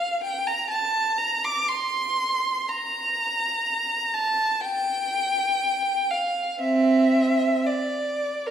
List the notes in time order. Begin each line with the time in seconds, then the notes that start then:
Already playing: F5
0.24 G5
0.47 A#5
0.70 A5
1.18 A#5
1.44 D6
1.69 C6
2.69 A#5
4.14 A5
4.61 G5
6.11 F5
6.61 C4 E5
7.67 D5
8.46 A#4